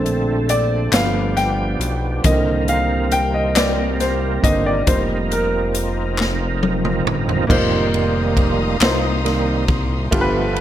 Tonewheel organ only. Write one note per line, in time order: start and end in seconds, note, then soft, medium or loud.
0.00 0.93 D3 medium
0.00 0.93 A3 medium
0.00 0.93 C4 medium
0.00 0.93 A4 medium
0.92 2.24 F3 medium
0.92 0.99 A#3 soft
0.92 2.24 D4 medium
0.92 2.24 G4 medium
0.99 2.27 B3 medium
2.22 4.83 C3 medium
2.22 4.82 A#3 medium
2.22 4.82 C4 medium
2.22 4.83 A#4 medium
4.87 7.46 F3 medium
4.87 7.46 C4 medium
4.87 7.46 D#4 medium
4.87 7.46 A#4 medium
7.49 8.77 D#3 soft
7.49 8.77 G3 soft
7.49 8.78 A#3 medium
9.25 9.65 D#3 soft
9.25 9.65 G3 soft
9.25 9.65 A#3 soft
10.13 10.61 F3 medium
10.13 10.61 A3 soft
10.13 10.61 B3 medium